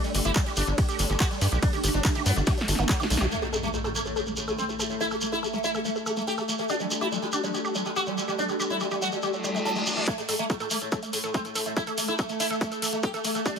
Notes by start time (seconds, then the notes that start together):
Already playing: A3 A4
0.04 G3, closed hi-hat, shekere
0.14 G1 G3 G4, open hi-hat, shekere
0.25 G1 E4 G4, closed hi-hat, shekere
0.35 G3, kick, clap, closed hi-hat, ride, shekere
0.46 G3 G4, closed hi-hat, shekere
0.56 G1 D4 G4, open hi-hat, shekere
0.67 G1 G3, closed hi-hat, shekere
0.78 G3 G4, kick, closed hi-hat, ride, shekere
0.89 G4, closed hi-hat, shekere
0.99 G1 G3, open hi-hat, shekere
1.10 G1 G3 G4, closed hi-hat, shekere
1.20 F#4 G4, kick, clap, closed hi-hat, ride, shekere
1.31 G3, closed hi-hat, shekere
1.41 G2 G3 G4, open hi-hat, shekere
1.52 B1 G3 G4, closed hi-hat, shekere
1.62 G3 D4, kick, closed hi-hat, ride, shekere
1.73 D3 G4, closed hi-hat, shekere
1.84 G1 D3 G4, open hi-hat, shekere
1.94 G1 G3 D4, closed hi-hat, shekere
2.05 D3 G4, kick, clap, closed hi-hat, ride, shekere
2.15 D3 G4, closed hi-hat, shekere
2.26 G2 G3 B3, open hi-hat, shekere
2.36 G1 D3 G4, closed hi-hat, shekere
2.46 D3 G4, kick, snare, closed hi-hat, ride, shekere
2.58 G3, snare, closed hi-hat, shekere
2.68 G1 D3 G4, open hi-hat, shekere
2.75 G1 D3 B3, snare, closed hi-hat, shekere
2.89 F#3 A4, kick, snare, clap, closed hi-hat, ride, shekere
3.00 D3 G4, snare, closed hi-hat, shekere
3.10 B1 D3 A3, open hi-hat, shekere
3.17 B1 D3 G4, snare, closed hi-hat, shekere
3.31 A3 A4, impact, shekere
3.42 A2 A4, shekere
3.53 A2 A4, shekere
3.63 A3, shekere
3.74 A2 A4, shekere
3.84 A2 A4, shekere
3.95 A3, shekere
4.05 A2 A4, shekere
4.16 A2 A4, shekere
4.26 A3, shekere
4.36 A2 A4, shekere
4.48 A2 A4, shekere
4.58 A3 C4, shekere
4.69 A2 A4, shekere
4.79 A2 A4, shekere
4.90 A2 A3, shekere
5.01 E4 A4, shekere
5.11 A3 A4, shekere
5.21 A3, shekere
5.32 E4 A4, shekere
5.43 A3 A4, shekere
5.53 A3, shekere
5.64 E4 A4, shekere
5.74 A3 A4, shekere
5.85 A3, shekere
5.95 A4, shekere
6.06 A3 A4, shekere
6.17 A3, shekere
6.27 G4 A4, shekere
6.38 A3 A4, shekere
6.48 A3, shekere
6.58 A3 A4, shekere
6.69 D4 G4, shekere
6.80 G3, shekere
6.91 G3 G4, shekere
7.01 E4 G4, shekere
7.12 G3, shekere
7.22 G3 G4, shekere
7.32 D4 G4, shekere
7.43 G3, shekere
7.54 G3 G4, shekere
7.65 G4, shekere
7.75 G3, shekere
7.85 G3 G4, shekere
7.96 F#4 G4, shekere
8.06 G3, shekere
8.17 G3 G4, shekere
8.28 G3 G4, shekere
8.39 G3 D4, shekere
8.49 G3 G4, shekere
8.60 G3 G4, shekere
8.70 G3 E4, shekere
8.80 G3 G4, shekere
8.91 G3 G4, shekere
9.02 G3 F#4, shekere
9.12 G3 G4, shekere
9.22 G3 G4, reverse cymbal, shekere
9.33 G3, shekere
9.44 G3, shekere
9.55 G3 A3, shekere
9.65 G3 A4, shekere
9.76 G3 A3, shekere
9.86 G3 G4, shekere
9.96 G3 A3, shekere
10.08 A3 A4, kick, closed hi-hat, shekere
10.18 A2 A4, closed hi-hat, shekere
10.29 A2 A4, open hi-hat, shekere
10.39 A3, closed hi-hat, shekere
10.50 A2 A4, kick, closed hi-hat, shekere
10.60 A2 A4, closed hi-hat, shekere
10.70 A3, open hi-hat, shekere
10.81 A2 A4, closed hi-hat, shekere
10.92 A2 A4, kick, closed hi-hat, shekere
11.03 A3, closed hi-hat, shekere
11.13 A2 A4, open hi-hat, shekere
11.23 A2 A4, closed hi-hat, shekere
11.34 A3 C4, kick, closed hi-hat, shekere
11.45 A2 A4, closed hi-hat, shekere
11.55 A2 A4, open hi-hat, shekere
11.66 A2 A3, closed hi-hat, shekere
11.77 E4 A4, kick, closed hi-hat, shekere
11.87 A3 A4, closed hi-hat, shekere
11.98 A3, open hi-hat, shekere
12.08 E4 A4, closed hi-hat, shekere
12.18 A3 A4, kick, closed hi-hat, shekere
12.29 A3, closed hi-hat, shekere
12.40 E4 A4, open hi-hat, shekere
12.50 A3 A4, closed hi-hat, shekere
12.61 A3, kick, closed hi-hat, shekere
12.72 A4, closed hi-hat, shekere
12.82 A3 A4, open hi-hat, shekere
12.92 A3, closed hi-hat, shekere
13.03 G4 A4, kick, closed hi-hat, shekere
13.14 A3 A4, closed hi-hat, shekere
13.24 A3, open hi-hat, shekere
13.35 A3 A4, closed hi-hat, shekere
13.45 D4 G4, kick, closed hi-hat, shekere
13.56 shekere